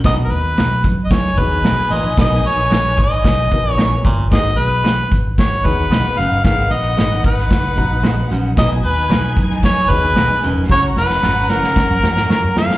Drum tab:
HH |x-x-x-x-x-x-x-x-|x-x-x-x-x-x-x-x-|x-x-x-x-x-x-x-x-|x-x-x-x-x-x-x-x-|
SD |o---o---o---o---|o---o---o---o---|o---o---o---o---|o---o--oo---o---|
BD |o-----o-o-o-----|o-----o-o-o---o-|o-----o-o-o-----|o-----o-o-o-----|

HH |x-x-x-x-x-x-x-x-|----------------|
SD |o---o--oo---o---|o-ooo-ooo-ooo-oo|
BD |o-----o-o-o-----|o-------o-------|